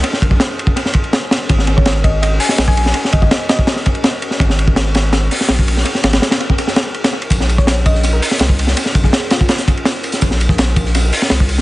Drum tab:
RD |x-x-x-x-x-xxx-x-|x-x-x-x-x---x-x-|x-x-x-x-x-xxx-x-|x-x-x-x-x---x-x-|
HH |----------------|----------o-----|----------------|----------o-----|
TB |----------------|----------------|----------------|----------------|
SD |-o--o----o--o-o-|-o--o------oo--o|-o--o-o-oo--o--o|-o--o-o-o--oo--o|
BD |--oo---o--o-----|o--o--o------o--|--oo---o--o-----|o--o---------o--|

RD |x-xxxxx-x-x-xx-x|x-x-x-x-x---x-x-|x-x-x-x-x-xxx-x-|x-x-x-x-x---x-x-|
HH |----------------|----------o-----|---------x-----x|----------o-----|
TB |----------------|x-x-x-x-x-x-x-x-|x-x-x-x-x-x-x-x-|x-x-x-x-x-x-x-x-|
SD |-ooooo---oo--o--|-o-oo--o---oo--o|-o-oooo-oo--oo-o|-o-oo--o---oo--o|
BD |-------o--------|o--o--o------o--|--oo---o--o-----|o--o--o------o--|